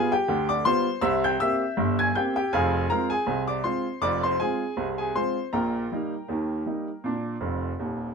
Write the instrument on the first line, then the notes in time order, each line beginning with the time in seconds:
upright piano
Already playing: G3 B3 F4 G#4 G#5
0.12 G4 G5
0.28 D2 D3
0.49 D5 D6
0.65 G3 B3 F4 C5 C6
1.01 C2 C3 E5 E6
1.24 G5 G6
1.40 A#3 C4 G4 E5 E6
1.77 G1 G2
1.99 G#5 G#6
2.15 A#3 C4 G4 G5 G6
2.36 G4 G5
2.53 F1 F2 G#4 F5 G#5
2.90 G#3 C4 F4 A#4 A#5
3.10 G#4 G#5
3.27 C2 C3
3.48 D5 D6
3.64 G#3 C4 F4 C5 C6
4.02 F1 F2 D5 D6
4.23 C5 C6
4.40 G#3 C4 F4 G#4 G#5
4.77 C2 C3
4.98 G#4 G#5
5.15 G#3 C4 F4 C5 C6
5.53 A#1 A#2 A#4 G5 A#5
5.92 G3 A#3 D#4
6.28 D#2 D#3
6.66 G3 A#3 D#4
7.04 A#2 D4
7.40 F1 F2
7.79 D#1 D#2